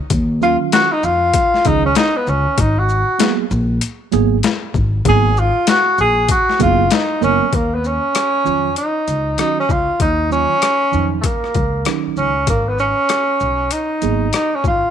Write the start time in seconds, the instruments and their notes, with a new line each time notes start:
0.10 upright bass D#2, kick, closed hi-hat
0.41 tine electric piano D#3 F#3 C#4 F4, tenor saxophone F4, shaker
0.72 tenor saxophone F#4, snare, closed hi-hat
0.92 tenor saxophone D#4
1.03 upright bass F2, tenor saxophone F4, shaker
1.33 kick, closed hi-hat
1.54 snare
1.64 upright bass C#2, tine electric piano D#3 F#3 C#4 G#4, tenor saxophone D#4, kick, closed hi-hat, shaker
1.86 tenor saxophone C#4
1.95 tenor saxophone D#4, snare, closed hi-hat
2.17 tenor saxophone B3
2.27 upright bass C#2, tenor saxophone C#4, shaker
2.58 upright bass G#1, tenor saxophone D#4, kick, closed hi-hat
2.79 tenor saxophone F#4
2.89 shaker
3.19 tine electric piano F#3 A#3 B3 G#4, snare, closed hi-hat
3.51 upright bass A#1, shaker
3.81 closed hi-hat
4.12 upright bass G#1, tine electric piano F#3 A#3 B3 G#4, closed hi-hat, shaker
4.43 snare, closed hi-hat
4.74 upright bass G#1, kick, shaker
5.05 upright bass G#1, tine electric piano F#3 A#3 B3 G#4, tenor saxophone G#4, kick, closed hi-hat
5.37 tenor saxophone F4, shaker
5.67 tenor saxophone F#4, snare, closed hi-hat
5.98 upright bass A#1, tenor saxophone G#4, shaker
6.29 tenor saxophone F#4, kick, closed hi-hat
6.49 snare
6.59 upright bass F#1, tine electric piano F#3 A#3 B3 G#4, tenor saxophone F4, kick, closed hi-hat, shaker
6.91 tenor saxophone D#4, snare, closed hi-hat
7.21 upright bass F#1, tine electric piano F#3 A#3 B3 A#4, tenor saxophone C#4, shaker
7.53 upright bass D#2, tenor saxophone A#3, kick, closed hi-hat
7.75 tenor saxophone B3
7.84 tenor saxophone C#4, shaker
8.15 cross-stick, closed hi-hat
8.44 upright bass F2, tine electric piano D#3 F#3 C#4 F4, shaker
8.76 tenor saxophone D#4, closed hi-hat
9.08 upright bass C#2, closed hi-hat, shaker
9.38 tine electric piano D#3 F#3 C#4 F#4, tenor saxophone D#4, cross-stick, closed hi-hat
9.60 tenor saxophone C#4
9.69 upright bass C#2, tenor saxophone F4, kick, shaker
10.00 upright bass D#2, tenor saxophone D#4, kick, closed hi-hat
10.30 tine electric piano D#3 F#3 C#4 F4, tenor saxophone C#4, shaker
10.62 cross-stick, closed hi-hat
10.92 upright bass F2, tine electric piano D#3 F#3 C#4 D#4, shaker
11.21 tenor saxophone A3 A#3, kick, closed hi-hat
11.44 cross-stick
11.54 upright bass C#2, kick, closed hi-hat, shaker
11.85 tine electric piano D#3 F#3 C#4 D#4, cross-stick, closed hi-hat
12.06 muted upright bass stroke
12.17 upright bass C#2, tenor saxophone C#4, shaker
12.47 upright bass G#1, tenor saxophone A#3, kick, closed hi-hat
12.68 tenor saxophone B3
12.79 tenor saxophone C#4, shaker
13.09 cross-stick, closed hi-hat
13.40 upright bass B1, shaker
13.71 tenor saxophone D#4, closed hi-hat
14.02 upright bass G#1, tine electric piano F#3 A#3 B3 G#4, closed hi-hat, shaker
14.33 tenor saxophone D#4, cross-stick, closed hi-hat
14.55 tenor saxophone C#4
14.64 upright bass G#1, tenor saxophone F4, kick, shaker